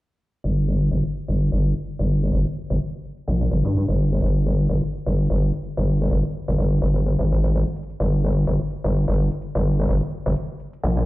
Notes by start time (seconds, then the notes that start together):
0.44 G1, closed hi-hat
0.81 closed hi-hat
0.91 G1, closed hi-hat
1.15 closed hi-hat
1.28 G1, closed hi-hat
1.39 closed hi-hat
1.52 G1
1.76 closed hi-hat
1.86 closed hi-hat
1.99 G1
2.10 closed hi-hat
2.16 closed hi-hat
2.23 closed hi-hat
2.33 G1, closed hi-hat
2.70 G1, closed hi-hat
2.80 closed hi-hat
3.04 closed hi-hat
3.17 closed hi-hat
3.28 A#1, closed hi-hat
3.51 G1
3.65 G2, closed hi-hat
3.75 closed hi-hat
3.88 G1
3.99 closed hi-hat
4.05 closed hi-hat
4.12 closed hi-hat
4.22 G1, closed hi-hat
4.59 closed hi-hat
4.69 G1, closed hi-hat
4.93 closed hi-hat
5.06 G1, closed hi-hat
5.17 closed hi-hat
5.30 G1
5.54 closed hi-hat
5.64 closed hi-hat
5.77 G1
5.88 closed hi-hat
5.94 closed hi-hat
6.01 closed hi-hat
6.11 G1, closed hi-hat
6.48 G1, closed hi-hat
6.58 G1, closed hi-hat
6.82 G1, closed hi-hat
6.95 closed hi-hat
7.06 closed hi-hat
7.19 G#1
7.43 closed hi-hat
7.53 closed hi-hat
7.76 closed hi-hat
7.83 closed hi-hat
7.90 closed hi-hat
8.00 G1, closed hi-hat
8.37 closed hi-hat
8.47 G1, closed hi-hat
8.71 closed hi-hat
8.84 G1, closed hi-hat
8.94 closed hi-hat
9.08 G1
9.32 closed hi-hat
9.42 closed hi-hat
9.55 G1
9.65 closed hi-hat
9.72 closed hi-hat
9.79 closed hi-hat
9.89 G1, closed hi-hat
10.26 G1, closed hi-hat
10.36 closed hi-hat
10.60 closed hi-hat
10.73 closed hi-hat
10.83 A#1, closed hi-hat